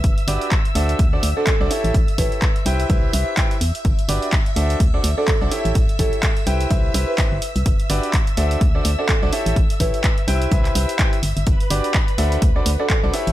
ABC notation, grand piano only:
X:1
M:4/4
L:1/16
Q:"Swing 16ths" 1/4=126
K:G
V:1 name="Grand piano"
z2 [DFGBd]2 z2 [DFAce]2 z [DFAcd] z [DFAcd] z [DFAcd] [EGA^ce]2 | z2 [EGA^ce]2 z2 [EGB=cg]2 [EGBce]2 [EGBce]2 [EGBcg] z3 | z2 [DFGBd]2 z2 [DFAce]2 z [DFAcd] z [DFAcd] z [DFAcd] [EGA^ce]2 | z2 [EGA^ce]2 z2 [EGB=cg]2 [EGBce]2 [EGBce]2 E z3 |
z2 [DFGBd]2 z2 [DFAce]2 z [DFAcd] z [DFAcd] z [DFAcd] [EGA^ce]2 | z2 [EGA^ce]2 z2 [EGB=cg]2 [EGBce]2 [EGBce]2 [EGBcg] z3 | z2 [DFGBd]2 z2 [DFAce]2 z [DFAcd] z [DFAcd] z [DFAcd] [EGA^ce]2 |]